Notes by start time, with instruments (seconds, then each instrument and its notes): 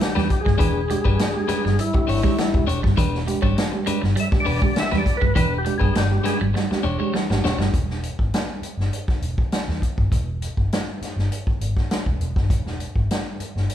0.01 reed electric piano E3, tonewheel organ G4, muted clean electric guitar stroke, snare, closed hi-hat
0.15 fingered electric bass E2, clean electric guitar G3 G#3 D4 G4 B4, reed electric piano G#3 D4 G4, snare
0.29 reed electric piano D4 G4, muted clean electric guitar stroke, kick, closed hi-hat
0.41 tonewheel organ G#4
0.45 fingered electric bass G1, clean electric guitar G#3, muted clean electric guitar stroke, kick, snare
0.58 fingered electric bass E1, clean electric guitar E3 G#3 D4 G4 B4, reed electric piano E3, kick, closed hi-hat
0.88 reed electric piano G#3 D4 G4, muted clean electric guitar stroke, closed hi-hat
1.05 fingered electric bass G1, clean electric guitar G3 G#3 D4 G4 B4, reed electric piano D4 G4, kick
1.19 reed electric piano E3, muted clean electric guitar stroke, snare, closed hi-hat
1.34 reed electric piano G#3 D4 G4, muted clean electric guitar stroke
1.48 clean electric guitar G#3 D4 G4 B4, reed electric piano D4 G4, tonewheel organ G#4, muted fingered electric bass stroke, snare, closed hi-hat
1.65 fingered electric bass G1, clean electric guitar G3, muted clean electric guitar stroke, snare
1.79 clean electric guitar G3, tonewheel organ E4, muted clean electric guitar stroke, closed hi-hat
1.94 reed electric piano G#3 D4 G4, muted clean electric guitar stroke, kick
2.07 fingered electric bass G#1, reed electric piano E3, clean electric guitar G#3 D4 G4 C#5, muted clean electric guitar stroke, open hi-hat
2.23 reed electric piano G#3 D4 G4, clean electric guitar G#3 D4 G4 C#5, kick, snare
2.37 reed electric piano E3, clean electric guitar G3, muted clean electric guitar stroke, snare, closed hi-hat
2.54 fingered electric bass E1, reed electric piano G#3 D4 G4, muted clean electric guitar stroke, kick
2.67 fingered electric bass E1, clean electric guitar G#3 D4 G4 C#5, muted clean electric guitar stroke, closed hi-hat
2.82 fingered electric bass G1, clean electric guitar G3, muted clean electric guitar stroke, kick, snare
2.97 fingered electric bass E1, reed electric piano E3, clean electric guitar E3 G#3 D4 G4 B4, kick, closed hi-hat
3.15 snare
3.27 reed electric piano G#3 D4 G4, muted clean electric guitar stroke, closed hi-hat
3.42 fingered electric bass G#1, clean electric guitar G3 G#3 D4 G4 C#5, kick
3.57 reed electric piano E3, muted clean electric guitar stroke, snare, closed hi-hat
3.72 reed electric piano G#3 D4 G4, muted clean electric guitar stroke
3.86 clean electric guitar G#3 D4 G4 B4, reed electric piano D4 G4, muted fingered electric bass stroke, closed hi-hat
4.02 fingered electric bass G1, clean electric guitar G3, muted clean electric guitar stroke, snare
4.16 clean electric guitar G3, tonewheel organ E5, closed hi-hat
4.32 reed electric piano G#3 D4 G4, muted fingered electric bass stroke, muted clean electric guitar stroke, kick, snare
4.40 tonewheel organ D5
4.45 fingered electric bass E1, reed electric piano E3, clean electric guitar G#3 D4 G4 B4, open hi-hat
4.59 clean electric guitar G#3, reed electric piano G#3, tonewheel organ D5, muted clean electric guitar stroke, kick
4.64 reed electric piano D4 G4
4.76 reed electric piano E3, tonewheel organ E5, muted clean electric guitar stroke, snare, closed hi-hat
4.91 fingered electric bass E2, clean electric guitar G3 G#3 D4 G4 B4, reed electric piano G#3 D4 G4, snare
4.98 tonewheel organ D5
5.06 reed electric piano D4 G4, muted clean electric guitar stroke, kick, closed hi-hat
5.17 tonewheel organ B4
5.21 fingered electric bass G1, clean electric guitar G#3, muted clean electric guitar stroke, kick
5.35 fingered electric bass E1, clean electric guitar E3 G#3 D4 G4 B4, reed electric piano E3, tonewheel organ B4, kick, closed hi-hat
5.58 tonewheel organ G4
5.65 reed electric piano G#3 D4 G4, muted clean electric guitar stroke, closed hi-hat
5.78 fingered electric bass G1, clean electric guitar G3 G#3 D4 G4 B4, tonewheel organ G#4, kick
5.95 fingered electric bass G1, reed electric piano E3, tonewheel organ G4, muted clean electric guitar stroke, snare, closed hi-hat
6.11 reed electric piano G#3 D4 G4, muted clean electric guitar stroke
6.24 clean electric guitar G#3 D4 G4 B4, reed electric piano D4 G4, tonewheel organ G#4, snare, closed hi-hat
6.40 fingered electric bass G#1, clean electric guitar G3, muted clean electric guitar stroke
6.53 clean electric guitar G3, muted clean electric guitar stroke, snare
6.71 reed electric piano G#3 D4 G4, muted fingered electric bass stroke, muted clean electric guitar stroke, snare
6.83 fingered electric bass E1, reed electric piano E3, clean electric guitar G#3 D4 G4 C#5, muted clean electric guitar stroke
6.99 clean electric guitar G#3 D4 G4 C#5, reed electric piano G#3 D4 G4
7.14 reed electric piano E3, clean electric guitar G3, muted clean electric guitar stroke, snare
7.30 fingered electric bass G#1, reed electric piano G#3 D4 G4, muted clean electric guitar stroke, snare
7.43 fingered electric bass E1, clean electric guitar G#3 D4 G4 C#5, reed electric piano D4 G4, muted clean electric guitar stroke, snare
7.58 fingered electric bass G1, clean electric guitar G3, muted clean electric guitar stroke, snare
7.73 fingered electric bass E1, kick, closed hi-hat
7.90 snare
8.03 closed hi-hat
8.19 fingered electric bass G#1, kick
8.34 snare, closed hi-hat
8.61 muted fingered electric bass stroke, closed hi-hat
8.77 fingered electric bass G1, snare
8.93 closed hi-hat
9.08 muted fingered electric bass stroke, kick, snare
9.22 fingered electric bass E1, closed hi-hat
9.38 kick
9.52 snare, closed hi-hat
9.68 fingered electric bass E2, snare
9.82 kick, closed hi-hat
9.98 fingered electric bass G1, kick
10.12 fingered electric bass E1, kick, closed hi-hat
10.42 closed hi-hat
10.57 fingered electric bass G1, kick
10.72 snare, closed hi-hat
11.01 muted fingered electric bass stroke, snare, closed hi-hat
11.16 fingered electric bass G1, snare
11.32 closed hi-hat
11.47 muted fingered electric bass stroke, kick
11.61 fingered electric bass G#1, closed hi-hat
11.77 kick, snare
11.91 snare, closed hi-hat
12.06 fingered electric bass E1, kick
12.20 fingered electric bass E1, closed hi-hat
12.36 fingered electric bass G1, kick, snare
12.50 fingered electric bass E1, kick, closed hi-hat
12.66 snare
12.80 closed hi-hat
12.96 fingered electric bass G#1, kick
13.11 snare, closed hi-hat
13.40 muted fingered electric bass stroke, closed hi-hat
13.55 fingered electric bass G1, snare
13.69 closed hi-hat